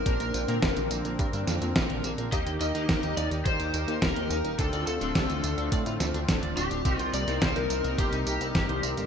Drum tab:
HH |xxxxxxxxxxxxxxxx|xxxxxxxxxxxxxxxx|xxxxxxxxxxxxxxxx|xxxxxxxxxxxxxxxx|
TB |xxxxxxxxxxxxx-xx|xxxxxxxxxxxxx-xx|xxxxxxxxxxxxx-xx|xxxxxxxxxxxxx-xx|
SD |----o-----o-o---|----o-------o---|----o-----o-o---|----o-------o---|
BD |o---o---o---o---|o---o---o---o---|o---o---o---o---|o---o---o---o---|